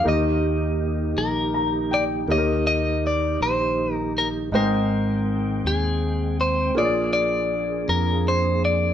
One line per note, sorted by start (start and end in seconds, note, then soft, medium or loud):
0.00 2.25 A#3 medium
0.04 1.13 D#2 medium
0.04 2.27 D#3 medium
0.04 1.13 D#3 medium
0.04 2.25 A#3 soft
0.04 2.26 D#4 medium
0.04 2.25 D#4 soft
0.04 2.28 D#4 medium
0.04 2.26 G4 medium
0.04 2.25 G4 soft
0.04 2.28 G4 medium
0.04 2.26 A#4 medium
0.08 1.89 D#5 medium
1.17 2.25 A#1 medium
1.17 1.94 A#4 medium
1.54 1.89 A#5 medium
1.91 2.04 D5 medium
1.91 2.26 G5 medium
2.27 3.36 D#2 medium
2.27 6.72 D#3 medium
2.27 3.37 D#3 soft
2.27 4.50 A#3 soft
2.27 4.48 A#3 medium
2.27 4.50 D#4 soft
2.27 4.49 D#4 medium
2.27 4.50 G4 medium
2.27 4.49 G4 soft
2.27 2.37 C#5 soft
2.31 2.66 D#5 medium
2.38 4.53 A#4 medium
2.67 3.05 D#5 medium
3.07 3.42 D5 medium
3.41 4.49 A#1 medium
3.41 3.95 C5 medium
3.95 4.12 A#4 medium
4.18 4.28 A#4 medium
4.52 5.60 G#1 medium
4.52 5.61 G#2 medium
4.52 6.72 G#3 medium
4.52 6.74 G#3 soft
4.52 6.75 C4 soft
4.52 6.72 D#4 medium
4.52 5.67 A#4 medium
4.52 6.73 C5 medium
4.52 6.74 G5 medium
4.52 6.73 G5 soft
5.64 6.76 D#2 medium
5.64 6.36 G#4 medium
6.41 6.75 C5 medium
6.75 7.84 A#1 medium
6.75 7.84 A#2 medium
6.75 8.94 F3 medium
6.75 8.94 A#3 medium
6.75 8.94 D4 soft
6.75 8.94 F4 soft
6.75 8.94 F4 medium
6.75 8.94 G#4 medium
6.75 8.94 G#4 soft
6.75 8.94 G#4 medium
6.75 6.84 C#5 soft
6.75 7.12 D5 medium
6.85 8.94 D5 medium
7.13 7.90 D5 medium
7.88 8.94 F2 medium
7.88 8.27 A#4 medium
8.28 8.62 C5 medium
8.65 8.94 D5 medium